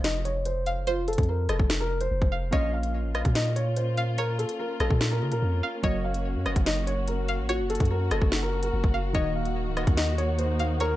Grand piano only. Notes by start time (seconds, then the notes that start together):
0.04 D#5
0.25 C#5
0.46 C5
0.87 F4
1.08 A4
1.29 A#4
1.49 A4
1.80 A#4
2.01 C5
2.53 D#5
2.73 F5
3.35 D#5
3.56 C#5
3.77 C5
4.18 A#4
4.39 A4
4.59 A#4
4.80 A4
5.11 A#4
5.32 A#4
5.84 D#5
6.04 F5
6.67 D#5
6.87 C#5
7.08 A#4
7.49 F#4
7.70 A4
7.91 A#4
8.11 A4
8.42 A#4
8.63 A#4
9.15 D#5
9.35 F5
9.97 D#5
10.18 C#5
10.39 C5
10.80 A#4